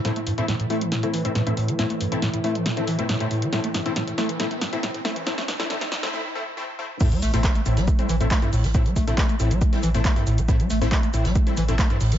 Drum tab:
CC |----------------|----------------|----------------|----------------|
HH |xxoxxxoxxxoxxxox|xxoxxxoxxxoxxxox|xxoxxxoxxxoxxxox|xxoxxxox--------|
SH |----------------|----------------|----------------|----------------|
CP |----------------|----------------|----------------|----------------|
SD |o---o---o---o---|o---o---o---o---|o-o-o-o-o-o-o-o-|oooooooo--------|
BD |----------------|----------------|----------------|----------------|

CC |x---------------|----------------|----------------|
HH |xxoxxxoxxxoxxxox|xxoxxxoxxxoxxxox|xxoxxxoxxxoxxxox|
SH |xxxxxxxxxxxxxxxx|xxxxxxxxxxxxxxxx|xxxxxxxxxxxxxxxx|
CP |----x-------x---|----x-------x---|----x-------x---|
SD |--ooo--o----o--o|----o----o--o---|--ooo--o----o--o|
BD |o---o---o---o---|o-o-o---o---o---|o---o---o---o---|